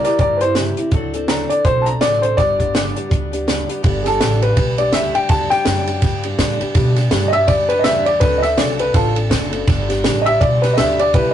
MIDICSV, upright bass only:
0, 0, Header, 1, 3, 480
1, 0, Start_track
1, 0, Key_signature, 1, "major"
1, 0, Tempo, 364964
1, 1213, Time_signature, 4, 2, 24, 8
1, 14913, End_track
2, 0, Start_track
2, 0, Title_t, "Upright bass"
2, 0, Program_c, 0, 32
2, 251, Note_on_c, 0, 43, 81
2, 923, Note_off_c, 0, 43, 0
2, 1207, Note_on_c, 0, 38, 89
2, 1881, Note_off_c, 0, 38, 0
2, 2166, Note_on_c, 0, 35, 85
2, 2577, Note_off_c, 0, 35, 0
2, 2654, Note_on_c, 0, 33, 84
2, 3061, Note_off_c, 0, 33, 0
2, 3133, Note_on_c, 0, 31, 92
2, 3804, Note_off_c, 0, 31, 0
2, 4095, Note_on_c, 0, 38, 85
2, 4766, Note_off_c, 0, 38, 0
2, 5052, Note_on_c, 0, 31, 91
2, 5517, Note_off_c, 0, 31, 0
2, 5532, Note_on_c, 0, 33, 97
2, 5997, Note_off_c, 0, 33, 0
2, 6014, Note_on_c, 0, 35, 89
2, 6478, Note_off_c, 0, 35, 0
2, 6506, Note_on_c, 0, 37, 90
2, 6765, Note_off_c, 0, 37, 0
2, 6967, Note_on_c, 0, 38, 91
2, 7235, Note_off_c, 0, 38, 0
2, 7451, Note_on_c, 0, 42, 98
2, 7916, Note_off_c, 0, 42, 0
2, 7924, Note_on_c, 0, 43, 92
2, 8392, Note_off_c, 0, 43, 0
2, 8400, Note_on_c, 0, 45, 88
2, 8671, Note_off_c, 0, 45, 0
2, 8880, Note_on_c, 0, 47, 95
2, 9350, Note_off_c, 0, 47, 0
2, 9361, Note_on_c, 0, 43, 101
2, 9831, Note_off_c, 0, 43, 0
2, 9839, Note_on_c, 0, 42, 85
2, 10310, Note_off_c, 0, 42, 0
2, 10319, Note_on_c, 0, 40, 94
2, 10790, Note_off_c, 0, 40, 0
2, 10804, Note_on_c, 0, 38, 91
2, 11273, Note_off_c, 0, 38, 0
2, 11293, Note_on_c, 0, 36, 96
2, 11757, Note_off_c, 0, 36, 0
2, 11769, Note_on_c, 0, 33, 90
2, 12236, Note_off_c, 0, 33, 0
2, 12246, Note_on_c, 0, 30, 93
2, 12714, Note_off_c, 0, 30, 0
2, 12733, Note_on_c, 0, 31, 89
2, 13198, Note_off_c, 0, 31, 0
2, 13215, Note_on_c, 0, 33, 94
2, 13679, Note_off_c, 0, 33, 0
2, 13693, Note_on_c, 0, 35, 91
2, 14159, Note_off_c, 0, 35, 0
2, 14185, Note_on_c, 0, 38, 98
2, 14645, Note_off_c, 0, 38, 0
2, 14653, Note_on_c, 0, 36, 87
2, 14913, Note_off_c, 0, 36, 0
2, 14913, End_track
3, 0, Start_track
3, 0, Title_t, "Muted upright bass strokes"
3, 6799, Note_on_c, 9, 29, 43
3, 6931, Note_off_c, 9, 29, 0
3, 7266, Note_on_c, 9, 29, 41
3, 7397, Note_off_c, 9, 29, 0
3, 8690, Note_on_c, 9, 29, 41
3, 8821, Note_off_c, 9, 29, 0
3, 14913, End_track
0, 0, End_of_file